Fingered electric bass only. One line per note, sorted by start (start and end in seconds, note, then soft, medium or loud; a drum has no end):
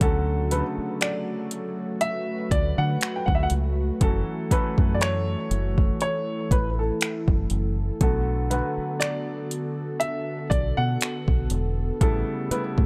0.01 0.61 D2 medium
0.78 muted fingered electric bass stroke soft
2.51 2.72 D2 medium
2.78 2.96 D3 loud
3.28 3.46 D2 medium
3.51 3.90 C#2 medium
4.01 4.22 F#1 medium
4.51 muted fingered electric bass stroke soft
4.78 5.35 F#2 medium
5.51 5.90 F#1 medium
6.51 6.90 A1 medium
7.28 7.46 F#1 medium
7.51 7.90 F#1 medium
8.01 8.61 B1 loud
8.78 muted fingered electric bass stroke soft
10.51 10.72 B1 medium
10.78 10.96 B2 medium
11.28 11.46 B1 medium
11.51 11.90 E1 medium
12.01 12.22 A1 medium
12.51 muted fingered electric bass stroke soft
12.78 12.86 A2 medium